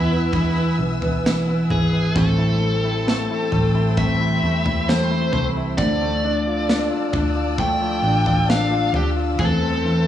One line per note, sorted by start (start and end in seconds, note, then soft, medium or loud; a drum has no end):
0.00 0.32 E2 medium
0.00 0.75 E2 medium
0.00 0.33 B2 medium
0.00 0.76 B2 medium
0.00 0.34 E3 medium
0.00 0.32 G#3 medium
0.00 2.13 G#3 medium
0.00 0.12 B3 medium
0.00 0.33 B3 medium
0.00 0.76 E4 medium
0.00 0.34 B4 medium
0.00 2.12 B4 medium
0.00 2.13 E5 medium
0.00 2.12 G#5 medium
0.00 2.12 E6 medium
0.12 0.56 B3 medium
0.32 1.24 E3 medium
0.32 0.78 E3 medium
0.32 1.24 G#3 medium
0.32 1.24 B3 medium
0.32 1.26 E4 medium
0.32 kick medium
0.32 floor tom medium
0.57 1.01 B3 soft
0.78 1.66 B1 medium
0.78 1.24 E3 soft
1.02 1.47 B3 soft
1.02 floor tom medium
1.24 2.16 E3 medium
1.24 1.70 E3 medium
1.24 2.16 G#3 medium
1.24 2.16 B3 medium
1.24 2.18 E4 medium
1.24 snare loud
1.49 1.91 B3 medium
1.70 2.12 G#1 medium
1.70 2.15 E3 medium
1.70 2.13 G#4 medium
1.70 floor tom medium
1.93 2.15 B3 soft
2.15 3.25 A1 medium
2.15 3.97 A2 medium
2.15 3.97 E3 medium
2.15 3.97 G3 medium
2.15 2.59 A3 medium
2.15 3.98 C4 medium
2.15 3.99 E4 medium
2.15 4.04 A4 medium
2.15 5.75 C5 medium
2.15 5.74 G5 medium
2.15 3.96 A5 medium
2.15 5.75 E6 medium
2.15 kick medium
2.15 floor tom loud
2.38 2.83 E4 soft
2.61 3.06 A3 soft
2.84 3.29 E4 soft
3.07 3.51 A3 medium
3.07 snare medium
3.31 3.73 E4 soft
3.52 4.39 A1 medium
3.52 3.96 A3 medium
3.52 floor tom medium
3.75 4.19 E4 medium
3.97 4.87 E3 soft
3.97 4.87 G3 medium
3.97 4.42 A3 medium
3.97 4.88 C4 medium
3.97 4.89 E4 medium
3.97 4.91 E5 medium
3.97 5.77 B5 medium
3.97 kick medium
3.97 floor tom medium
4.20 4.64 E4 medium
4.43 5.29 E2 medium
4.43 4.87 A3 soft
4.65 5.09 E4 soft
4.65 floor tom medium
4.87 5.78 E3 medium
4.87 5.78 G3 medium
4.87 5.32 A3 medium
4.87 5.79 C4 medium
4.87 5.79 E4 medium
4.87 5.32 C5 medium
4.87 snare loud
5.11 5.55 E4 medium
5.33 5.75 C2 medium
5.33 5.77 A3 medium
5.33 5.45 C5 medium
5.33 floor tom medium
5.57 5.78 E4 medium
5.77 6.87 D2 medium
5.77 7.13 D3 medium
5.77 9.35 D3 medium
5.77 7.13 F3 medium
5.77 7.15 A3 medium
5.77 7.13 D4 medium
5.77 7.13 E4 medium
5.77 7.54 D5 medium
5.77 9.35 D5 medium
5.77 10.07 A5 medium
5.77 10.07 E6 medium
5.77 kick medium
5.77 floor tom medium
6.01 7.57 A3 medium
6.24 6.68 D4 medium
6.47 6.89 F4 soft
6.69 7.12 D4 medium
6.69 snare loud
6.91 7.34 F4 soft
7.13 7.99 D2 medium
7.13 7.57 A3 soft
7.13 8.02 D4 medium
7.13 7.58 D4 soft
7.13 7.58 E4 medium
7.13 kick medium
7.13 floor tom medium
7.35 7.80 F4 soft
7.58 8.47 F3 medium
7.58 9.35 A3 medium
7.58 8.48 A3 medium
7.58 8.48 D4 medium
7.58 8.51 E4 medium
7.58 8.49 G5 medium
7.58 kick medium
7.58 floor tom medium
7.81 8.25 F4 soft
8.02 8.89 A1 medium
8.02 8.47 D4 medium
8.26 8.69 F4 medium
8.26 floor tom medium
8.48 9.37 F3 medium
8.48 9.38 A3 medium
8.48 8.93 D4 medium
8.48 9.39 D4 medium
8.48 8.91 F5 medium
8.48 snare loud
8.71 9.15 F4 medium
8.93 9.35 D2 medium
8.93 9.38 D4 medium
8.93 9.08 G4 medium
8.93 floor tom medium
9.16 9.38 F4 soft
9.38 10.07 E2 loud
9.38 10.07 E3 medium
9.38 9.83 E3 medium
9.38 10.07 A3 medium
9.38 10.07 C4 medium
9.38 10.07 E4 medium
9.38 10.07 A4 medium
9.38 10.07 C5 medium
9.38 10.07 E5 medium
9.38 kick medium
9.38 floor tom medium
9.62 10.05 C4 medium
9.85 10.07 E3 medium